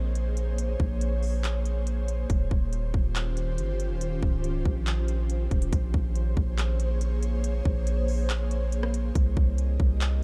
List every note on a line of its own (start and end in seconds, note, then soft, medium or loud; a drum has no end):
0.00 0.76 A#1 loud
0.00 2.26 A#3 medium
0.00 2.26 G#4 medium
0.00 2.26 C5 medium
0.00 2.26 C#5 medium
0.15 closed hi-hat medium
0.37 closed hi-hat medium
0.58 closed hi-hat medium
0.80 2.26 A#1 loud
0.80 kick loud
1.01 closed hi-hat medium
1.23 open hi-hat medium
1.44 clap loud
1.44 closed hi-hat medium
1.65 closed hi-hat medium
1.87 closed hi-hat medium
2.08 closed hi-hat medium
2.30 2.50 D#1 loud
2.30 5.69 D#3 medium
2.30 5.69 C#4 medium
2.30 5.69 F4 medium
2.30 5.69 G4 medium
2.30 5.69 C5 medium
2.30 kick loud
2.30 closed hi-hat medium
2.51 2.92 D#1 loud
2.51 kick medium
2.73 closed hi-hat medium
2.94 3.60 D#1 loud
2.94 kick medium
3.16 clap loud
3.16 closed hi-hat medium
3.37 closed hi-hat medium
3.58 3.92 G1 medium
3.58 closed hi-hat medium
3.80 closed hi-hat medium
3.91 4.21 D#1 medium
4.01 closed hi-hat medium
4.23 4.64 C#1 loud
4.23 kick loud
4.44 closed hi-hat medium
4.65 5.48 A#1 loud
4.65 kick medium
4.87 clap loud
4.87 closed hi-hat medium
5.08 closed hi-hat medium
5.30 closed hi-hat medium
5.51 5.72 D#1 loud
5.51 kick medium
5.51 closed hi-hat soft
5.62 closed hi-hat medium
5.73 5.93 A#1 loud
5.73 9.12 A#3 medium
5.73 9.12 G#4 medium
5.73 9.12 C5 medium
5.73 9.12 C#5 medium
5.73 kick loud
5.73 closed hi-hat medium
5.94 6.35 A#1 loud
5.94 kick loud
6.16 closed hi-hat medium
6.37 7.61 A#1 loud
6.37 kick medium
6.58 clap loud
6.58 closed hi-hat medium
6.80 closed hi-hat medium
7.01 closed hi-hat medium
7.23 closed hi-hat medium
7.44 closed hi-hat medium
7.65 9.11 A#1 loud
7.65 kick loud
7.87 closed hi-hat medium
8.08 open hi-hat medium
8.30 clap loud
8.30 closed hi-hat medium
8.51 closed hi-hat medium
8.72 closed hi-hat medium
8.83 cross-stick loud
8.94 closed hi-hat medium
9.15 9.36 C2 loud
9.15 10.23 C4 medium
9.15 10.23 G4 medium
9.15 10.23 A#4 medium
9.15 10.23 D#5 medium
9.15 kick loud
9.15 closed hi-hat medium
9.37 9.78 C2 loud
9.37 kick loud
9.58 closed hi-hat medium
9.80 10.23 C2 loud
9.80 kick loud
10.01 clap loud
10.01 closed hi-hat medium